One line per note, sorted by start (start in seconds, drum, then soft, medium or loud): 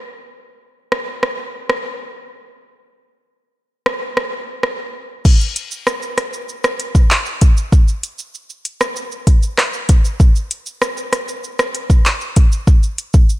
0.92 cross-stick medium
1.23 cross-stick medium
1.69 cross-stick medium
3.86 cross-stick medium
4.17 cross-stick medium
4.63 cross-stick medium
5.25 kick loud
5.25 crash loud
5.25 shaker medium
5.41 shaker medium
5.56 closed hi-hat medium
5.56 shaker medium
5.71 shaker medium
5.87 cross-stick loud
5.87 shaker medium
6.02 shaker medium
6.18 cross-stick medium
6.18 closed hi-hat medium
6.18 shaker medium
6.33 shaker medium
6.49 shaker medium
6.64 cross-stick loud
6.64 shaker medium
6.80 closed hi-hat medium
6.80 shaker medium
6.95 kick medium
6.95 shaker medium
7.11 clap medium
7.11 shaker medium
7.26 shaker medium
7.41 kick loud
7.41 closed hi-hat medium
7.41 shaker medium
7.57 shaker medium
7.72 kick loud
7.72 shaker medium
7.88 shaker medium
8.03 closed hi-hat medium
8.03 shaker medium
8.19 shaker medium
8.34 shaker medium
8.50 shaker medium
8.65 closed hi-hat medium
8.65 shaker medium
8.81 cross-stick loud
8.81 shaker medium
8.96 shaker medium
9.12 shaker medium
9.27 kick loud
9.27 closed hi-hat medium
9.27 shaker medium
9.43 shaker medium
9.58 cross-stick medium
9.58 clap medium
9.58 shaker medium
9.73 shaker medium
9.89 kick loud
9.89 closed hi-hat medium
9.89 shaker medium
10.05 shaker medium
10.20 kick loud
10.20 shaker medium
10.36 shaker medium
10.51 closed hi-hat loud
10.51 shaker medium
10.66 shaker medium
10.82 cross-stick loud
10.82 shaker medium
10.97 shaker medium
11.13 cross-stick medium
11.13 closed hi-hat medium
11.13 shaker medium
11.28 shaker medium
11.44 shaker medium
11.59 cross-stick loud
11.59 shaker medium
11.75 closed hi-hat medium
11.75 shaker medium
11.90 kick medium
11.90 shaker medium
12.06 clap medium
12.06 shaker medium
12.21 shaker medium
12.36 kick loud
12.36 closed hi-hat medium
12.36 shaker medium
12.52 shaker medium
12.67 kick loud
12.67 shaker medium
12.83 shaker medium
12.98 closed hi-hat medium
12.98 shaker medium
13.13 kick loud
13.13 shaker medium
13.29 shaker medium